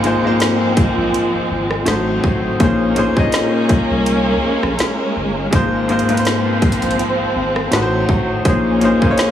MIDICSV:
0, 0, Header, 1, 5, 480
1, 0, Start_track
1, 0, Key_signature, -5, "minor"
1, 0, Tempo, 731707
1, 1706, Time_signature, 4, 2, 24, 8
1, 6107, End_track
2, 0, Start_track
2, 0, Title_t, "Grand piano"
2, 0, Program_c, 0, 0
2, 0, Control_c, 0, 64, 127
2, 0, Note_on_c, 0, 44, 82
2, 0, Note_on_c, 0, 56, 75
2, 0, Note_on_c, 0, 58, 75
2, 0, Note_on_c, 0, 65, 81
2, 0, Note_on_c, 0, 72, 101
2, 17, Note_off_c, 0, 44, 0
2, 17, Note_on_c, 0, 44, 86
2, 24, Note_off_c, 0, 56, 0
2, 24, Note_on_c, 0, 56, 86
2, 30, Note_off_c, 0, 58, 0
2, 30, Note_on_c, 0, 58, 81
2, 39, Note_off_c, 0, 65, 0
2, 39, Note_on_c, 0, 65, 84
2, 44, Note_off_c, 0, 72, 0
2, 44, Note_on_c, 0, 72, 97
2, 126, Note_off_c, 0, 44, 0
2, 130, Note_off_c, 0, 56, 0
2, 133, Note_off_c, 0, 58, 0
2, 137, Note_off_c, 0, 65, 0
2, 140, Note_off_c, 0, 72, 0
2, 148, Note_on_c, 0, 44, 89
2, 155, Note_on_c, 0, 56, 81
2, 161, Note_on_c, 0, 58, 80
2, 168, Note_on_c, 0, 65, 81
2, 176, Note_on_c, 0, 72, 99
2, 924, Note_off_c, 0, 44, 0
2, 927, Note_off_c, 0, 56, 0
2, 930, Note_off_c, 0, 58, 0
2, 934, Note_off_c, 0, 65, 0
2, 938, Note_off_c, 0, 72, 0
2, 1216, Note_on_c, 0, 45, 88
2, 1225, Note_on_c, 0, 57, 83
2, 1230, Note_on_c, 0, 63, 89
2, 1232, Control_c, 0, 64, 0
2, 1236, Note_on_c, 0, 66, 80
2, 1243, Note_on_c, 0, 72, 100
2, 1343, Control_c, 0, 64, 127
2, 1617, Note_off_c, 0, 45, 0
2, 1621, Note_off_c, 0, 57, 0
2, 1624, Note_off_c, 0, 63, 0
2, 1627, Note_off_c, 0, 66, 0
2, 1630, Note_off_c, 0, 72, 0
2, 1699, Note_on_c, 0, 46, 85
2, 1706, Note_on_c, 0, 58, 80
2, 1710, Note_on_c, 0, 61, 75
2, 1714, Control_c, 0, 64, 0
2, 1715, Note_on_c, 0, 63, 81
2, 1721, Note_on_c, 0, 68, 80
2, 1727, Note_on_c, 0, 72, 98
2, 1814, Control_c, 0, 64, 127
2, 1900, Note_off_c, 0, 46, 0
2, 1904, Note_off_c, 0, 58, 0
2, 1905, Note_off_c, 0, 61, 0
2, 1908, Note_off_c, 0, 63, 0
2, 1911, Note_off_c, 0, 68, 0
2, 1914, Note_off_c, 0, 72, 0
2, 1934, Note_on_c, 0, 46, 86
2, 1941, Note_on_c, 0, 58, 81
2, 1946, Note_on_c, 0, 61, 80
2, 1951, Note_on_c, 0, 63, 82
2, 1956, Note_on_c, 0, 68, 86
2, 1962, Note_on_c, 0, 72, 102
2, 2045, Note_off_c, 0, 46, 0
2, 2048, Note_off_c, 0, 58, 0
2, 2050, Note_off_c, 0, 61, 0
2, 2053, Note_off_c, 0, 63, 0
2, 2056, Note_off_c, 0, 68, 0
2, 2059, Note_off_c, 0, 72, 0
2, 2066, Note_on_c, 0, 46, 90
2, 2072, Note_on_c, 0, 58, 79
2, 2076, Note_on_c, 0, 61, 81
2, 2082, Note_on_c, 0, 63, 83
2, 2087, Note_on_c, 0, 68, 84
2, 2093, Note_on_c, 0, 75, 101
2, 2843, Note_off_c, 0, 46, 0
2, 2846, Note_off_c, 0, 58, 0
2, 2848, Note_off_c, 0, 61, 0
2, 2851, Note_off_c, 0, 63, 0
2, 2854, Note_off_c, 0, 68, 0
2, 2856, Note_off_c, 0, 75, 0
2, 3614, Note_on_c, 0, 44, 86
2, 3622, Note_on_c, 0, 56, 81
2, 3627, Note_on_c, 0, 58, 77
2, 3635, Control_c, 0, 64, 0
2, 3635, Note_on_c, 0, 65, 80
2, 3641, Note_on_c, 0, 72, 97
2, 3763, Control_c, 0, 64, 127
2, 3818, Note_off_c, 0, 44, 0
2, 3822, Note_off_c, 0, 56, 0
2, 3824, Note_off_c, 0, 58, 0
2, 3828, Note_off_c, 0, 65, 0
2, 3831, Note_off_c, 0, 72, 0
2, 3857, Note_on_c, 0, 44, 87
2, 3865, Note_on_c, 0, 56, 82
2, 3871, Note_on_c, 0, 58, 81
2, 3877, Note_on_c, 0, 65, 82
2, 3884, Note_on_c, 0, 72, 101
2, 3966, Note_off_c, 0, 44, 0
2, 3970, Note_off_c, 0, 56, 0
2, 3973, Note_off_c, 0, 58, 0
2, 3976, Note_off_c, 0, 65, 0
2, 3980, Note_off_c, 0, 72, 0
2, 3989, Note_on_c, 0, 44, 93
2, 3995, Note_on_c, 0, 56, 80
2, 4002, Note_on_c, 0, 58, 81
2, 4009, Note_on_c, 0, 65, 82
2, 4016, Note_on_c, 0, 71, 77
2, 4045, Note_off_c, 0, 71, 0
2, 4058, Note_on_c, 0, 72, 97
2, 4765, Note_off_c, 0, 44, 0
2, 4768, Note_off_c, 0, 56, 0
2, 4771, Note_off_c, 0, 58, 0
2, 4775, Note_off_c, 0, 65, 0
2, 4799, Note_off_c, 0, 72, 0
2, 5059, Note_on_c, 0, 45, 90
2, 5066, Note_on_c, 0, 57, 84
2, 5073, Note_on_c, 0, 63, 84
2, 5074, Control_c, 0, 64, 0
2, 5078, Note_on_c, 0, 66, 87
2, 5087, Note_on_c, 0, 71, 80
2, 5122, Note_off_c, 0, 71, 0
2, 5128, Note_on_c, 0, 72, 100
2, 5205, Control_c, 0, 64, 127
2, 5458, Note_off_c, 0, 45, 0
2, 5461, Note_off_c, 0, 57, 0
2, 5465, Note_off_c, 0, 63, 0
2, 5468, Note_off_c, 0, 66, 0
2, 5493, Note_off_c, 0, 72, 0
2, 5539, Note_on_c, 0, 46, 85
2, 5543, Note_on_c, 0, 58, 78
2, 5549, Note_on_c, 0, 61, 78
2, 5554, Note_on_c, 0, 63, 83
2, 5555, Control_c, 0, 64, 0
2, 5560, Note_on_c, 0, 68, 83
2, 5565, Note_on_c, 0, 72, 89
2, 5680, Control_c, 0, 64, 127
2, 5740, Note_off_c, 0, 46, 0
2, 5742, Note_off_c, 0, 58, 0
2, 5745, Note_off_c, 0, 61, 0
2, 5747, Note_off_c, 0, 63, 0
2, 5751, Note_off_c, 0, 68, 0
2, 5753, Note_off_c, 0, 72, 0
2, 5778, Note_on_c, 0, 46, 91
2, 5784, Note_on_c, 0, 58, 80
2, 5789, Note_on_c, 0, 61, 79
2, 5796, Note_on_c, 0, 63, 80
2, 5801, Note_on_c, 0, 68, 86
2, 5806, Note_on_c, 0, 72, 98
2, 5887, Note_off_c, 0, 46, 0
2, 5890, Note_off_c, 0, 58, 0
2, 5892, Note_off_c, 0, 61, 0
2, 5896, Note_off_c, 0, 63, 0
2, 5898, Note_off_c, 0, 68, 0
2, 5900, Note_off_c, 0, 72, 0
2, 5906, Note_on_c, 0, 46, 85
2, 5912, Note_on_c, 0, 58, 81
2, 5917, Note_on_c, 0, 61, 82
2, 5923, Note_on_c, 0, 63, 80
2, 5928, Note_on_c, 0, 68, 82
2, 5934, Note_on_c, 0, 72, 79
2, 5964, Note_off_c, 0, 72, 0
2, 5976, Note_on_c, 0, 73, 99
2, 6107, Note_off_c, 0, 46, 0
2, 6107, Note_off_c, 0, 58, 0
2, 6107, Note_off_c, 0, 61, 0
2, 6107, Note_off_c, 0, 63, 0
2, 6107, Note_off_c, 0, 68, 0
2, 6107, Note_off_c, 0, 73, 0
2, 6107, End_track
3, 0, Start_track
3, 0, Title_t, "String section"
3, 0, Program_c, 1, 48
3, 0, Note_on_c, 1, 53, 88
3, 0, Note_on_c, 1, 56, 85
3, 0, Note_on_c, 1, 60, 94
3, 1199, Note_off_c, 1, 56, 0
3, 1210, Note_off_c, 1, 60, 0
3, 1212, Note_off_c, 1, 53, 0
3, 1228, Note_on_c, 1, 54, 75
3, 1228, Note_on_c, 1, 60, 84
3, 1232, Note_on_c, 1, 57, 67
3, 1702, Note_off_c, 1, 54, 0
3, 1702, Note_off_c, 1, 60, 0
3, 1704, Note_off_c, 1, 57, 0
3, 1712, Note_on_c, 1, 56, 82
3, 1712, Note_on_c, 1, 58, 76
3, 1713, Note_on_c, 1, 61, 98
3, 3610, Note_off_c, 1, 58, 0
3, 3610, Note_off_c, 1, 61, 0
3, 3630, Note_on_c, 1, 53, 80
3, 3630, Note_on_c, 1, 60, 91
3, 5043, Note_off_c, 1, 56, 0
3, 5053, Note_off_c, 1, 53, 0
3, 5061, Note_on_c, 1, 54, 78
3, 5062, Note_on_c, 1, 57, 67
3, 5529, Note_off_c, 1, 60, 0
3, 5538, Note_off_c, 1, 54, 0
3, 5539, Note_off_c, 1, 57, 0
3, 5541, Note_on_c, 1, 58, 78
3, 5543, Note_on_c, 1, 56, 87
3, 5544, Note_on_c, 1, 61, 92
3, 6107, Note_off_c, 1, 56, 0
3, 6107, Note_off_c, 1, 58, 0
3, 6107, Note_off_c, 1, 61, 0
3, 6107, End_track
4, 0, Start_track
4, 0, Title_t, "Sub bass"
4, 0, Program_c, 2, 38
4, 0, Note_on_c, 2, 32, 122
4, 107, Note_off_c, 2, 32, 0
4, 154, Note_on_c, 2, 34, 54
4, 199, Note_off_c, 2, 34, 0
4, 504, Note_on_c, 2, 34, 52
4, 556, Note_off_c, 2, 34, 0
4, 635, Note_on_c, 2, 34, 104
4, 731, Note_off_c, 2, 34, 0
4, 875, Note_on_c, 2, 32, 49
4, 920, Note_off_c, 2, 32, 0
4, 987, Note_on_c, 2, 32, 94
4, 1194, Note_off_c, 2, 32, 0
4, 1226, Note_on_c, 2, 33, 107
4, 1434, Note_off_c, 2, 33, 0
4, 1466, Note_on_c, 2, 32, 101
4, 1674, Note_off_c, 2, 32, 0
4, 1706, Note_on_c, 2, 34, 121
4, 2026, Note_off_c, 2, 34, 0
4, 2077, Note_on_c, 2, 36, 48
4, 2121, Note_off_c, 2, 36, 0
4, 2422, Note_on_c, 2, 36, 48
4, 2475, Note_off_c, 2, 36, 0
4, 2557, Note_on_c, 2, 36, 97
4, 2860, Note_off_c, 2, 36, 0
4, 2907, Note_on_c, 2, 34, 52
4, 2958, Note_off_c, 2, 34, 0
4, 3035, Note_on_c, 2, 34, 91
4, 3131, Note_off_c, 2, 34, 0
4, 3386, Note_on_c, 2, 31, 98
4, 3594, Note_off_c, 2, 31, 0
4, 3625, Note_on_c, 2, 32, 124
4, 3946, Note_off_c, 2, 32, 0
4, 3996, Note_on_c, 2, 34, 51
4, 4040, Note_off_c, 2, 34, 0
4, 4342, Note_on_c, 2, 34, 51
4, 4395, Note_off_c, 2, 34, 0
4, 4475, Note_on_c, 2, 34, 96
4, 4571, Note_off_c, 2, 34, 0
4, 4717, Note_on_c, 2, 32, 46
4, 4761, Note_off_c, 2, 32, 0
4, 4825, Note_on_c, 2, 32, 103
4, 5033, Note_off_c, 2, 32, 0
4, 5067, Note_on_c, 2, 33, 99
4, 5275, Note_off_c, 2, 33, 0
4, 5305, Note_on_c, 2, 32, 97
4, 5513, Note_off_c, 2, 32, 0
4, 5545, Note_on_c, 2, 34, 119
4, 5866, Note_off_c, 2, 34, 0
4, 5917, Note_on_c, 2, 36, 50
4, 5960, Note_off_c, 2, 36, 0
4, 6107, End_track
5, 0, Start_track
5, 0, Title_t, "Drums"
5, 25, Note_on_c, 9, 42, 74
5, 91, Note_off_c, 9, 42, 0
5, 264, Note_on_c, 9, 42, 85
5, 273, Note_on_c, 9, 38, 125
5, 329, Note_off_c, 9, 42, 0
5, 339, Note_off_c, 9, 38, 0
5, 504, Note_on_c, 9, 36, 103
5, 504, Note_on_c, 9, 42, 69
5, 570, Note_off_c, 9, 36, 0
5, 570, Note_off_c, 9, 42, 0
5, 750, Note_on_c, 9, 42, 78
5, 816, Note_off_c, 9, 42, 0
5, 1119, Note_on_c, 9, 37, 82
5, 1185, Note_off_c, 9, 37, 0
5, 1222, Note_on_c, 9, 42, 75
5, 1233, Note_on_c, 9, 38, 120
5, 1288, Note_off_c, 9, 42, 0
5, 1298, Note_off_c, 9, 38, 0
5, 1467, Note_on_c, 9, 36, 95
5, 1533, Note_off_c, 9, 36, 0
5, 1706, Note_on_c, 9, 36, 125
5, 1706, Note_on_c, 9, 42, 71
5, 1771, Note_off_c, 9, 42, 0
5, 1772, Note_off_c, 9, 36, 0
5, 1943, Note_on_c, 9, 42, 75
5, 2008, Note_off_c, 9, 42, 0
5, 2077, Note_on_c, 9, 36, 99
5, 2143, Note_off_c, 9, 36, 0
5, 2180, Note_on_c, 9, 42, 85
5, 2190, Note_on_c, 9, 38, 121
5, 2246, Note_off_c, 9, 42, 0
5, 2255, Note_off_c, 9, 38, 0
5, 2423, Note_on_c, 9, 36, 95
5, 2423, Note_on_c, 9, 42, 72
5, 2488, Note_off_c, 9, 42, 0
5, 2489, Note_off_c, 9, 36, 0
5, 2665, Note_on_c, 9, 42, 79
5, 2731, Note_off_c, 9, 42, 0
5, 3039, Note_on_c, 9, 37, 89
5, 3104, Note_off_c, 9, 37, 0
5, 3140, Note_on_c, 9, 42, 75
5, 3151, Note_on_c, 9, 38, 110
5, 3206, Note_off_c, 9, 42, 0
5, 3216, Note_off_c, 9, 38, 0
5, 3625, Note_on_c, 9, 36, 117
5, 3625, Note_on_c, 9, 42, 75
5, 3690, Note_off_c, 9, 36, 0
5, 3691, Note_off_c, 9, 42, 0
5, 3864, Note_on_c, 9, 42, 44
5, 3930, Note_off_c, 9, 42, 0
5, 3930, Note_on_c, 9, 42, 56
5, 3994, Note_off_c, 9, 42, 0
5, 3994, Note_on_c, 9, 42, 70
5, 4050, Note_off_c, 9, 42, 0
5, 4050, Note_on_c, 9, 42, 84
5, 4101, Note_off_c, 9, 42, 0
5, 4101, Note_on_c, 9, 42, 84
5, 4111, Note_on_c, 9, 38, 127
5, 4167, Note_off_c, 9, 42, 0
5, 4176, Note_off_c, 9, 38, 0
5, 4343, Note_on_c, 9, 36, 97
5, 4343, Note_on_c, 9, 42, 61
5, 4408, Note_off_c, 9, 36, 0
5, 4409, Note_off_c, 9, 42, 0
5, 4409, Note_on_c, 9, 42, 60
5, 4475, Note_off_c, 9, 42, 0
5, 4475, Note_on_c, 9, 42, 61
5, 4530, Note_off_c, 9, 42, 0
5, 4530, Note_on_c, 9, 42, 63
5, 4588, Note_off_c, 9, 42, 0
5, 4588, Note_on_c, 9, 42, 83
5, 4654, Note_off_c, 9, 42, 0
5, 4960, Note_on_c, 9, 37, 90
5, 5025, Note_off_c, 9, 37, 0
5, 5063, Note_on_c, 9, 42, 75
5, 5073, Note_on_c, 9, 38, 114
5, 5128, Note_off_c, 9, 42, 0
5, 5138, Note_off_c, 9, 38, 0
5, 5305, Note_on_c, 9, 36, 90
5, 5371, Note_off_c, 9, 36, 0
5, 5544, Note_on_c, 9, 36, 117
5, 5544, Note_on_c, 9, 42, 73
5, 5609, Note_off_c, 9, 42, 0
5, 5610, Note_off_c, 9, 36, 0
5, 5782, Note_on_c, 9, 42, 75
5, 5848, Note_off_c, 9, 42, 0
5, 5916, Note_on_c, 9, 36, 99
5, 5982, Note_off_c, 9, 36, 0
5, 6019, Note_on_c, 9, 42, 81
5, 6029, Note_on_c, 9, 38, 127
5, 6085, Note_off_c, 9, 42, 0
5, 6094, Note_off_c, 9, 38, 0
5, 6107, End_track
0, 0, End_of_file